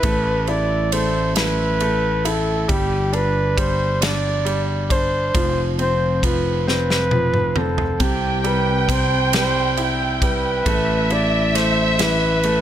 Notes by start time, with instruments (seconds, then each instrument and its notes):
Already playing: flugelhorn B4
0.03 fretless electric bass A1, grand piano A3, kick, ride
0.47 grand piano E4, flugelhorn D5, ride
0.92 grand piano A3, flugelhorn C5, ride
1.36 grand piano E4, flugelhorn B4, snare, ride
1.80 grand piano A3, ride
2.25 grand piano E4, flugelhorn A4, ride
2.68 fretless electric bass G1, grand piano G3, flugelhorn G4, kick, ride
3.13 grand piano D4, flugelhorn B4, ride
3.57 grand piano G3, flugelhorn C5, kick, ride
4.01 grand piano D4, flugelhorn D5, snare, ride
4.45 grand piano G3, ride
4.89 grand piano D4, flugelhorn C5, kick, ride
5.35 fretless electric bass F1, grand piano F3, kick, ride
5.79 grand piano C4, flugelhorn C5, ride
6.23 grand piano F3, flugelhorn B4, kick, ride
6.67 grand piano C4, flugelhorn B4, snare
6.90 snare
7.11 grand piano F3, high tom
7.34 mid tom
7.56 grand piano C4, flugelhorn A4, mid tom
7.78 floor tom
8.00 fretless electric bass C2, grand piano C3, flugelhorn G4, violin section G5, kick, ride
8.44 grand piano G3, flugelhorn B4, ride
8.88 grand piano C3, flugelhorn C5, kick, ride
9.33 grand piano G3, flugelhorn C5, snare, ride
9.77 grand piano E4, ride
10.22 grand piano G3, flugelhorn B4, kick, ride
10.65 fretless electric bass A1, grand piano A3, violin section E5, kick, ride
11.10 grand piano E4, flugelhorn D5, ride
11.55 grand piano A3, flugelhorn C5, snare, ride
11.99 grand piano E3, flugelhorn B4, snare, ride
12.43 grand piano A3, ride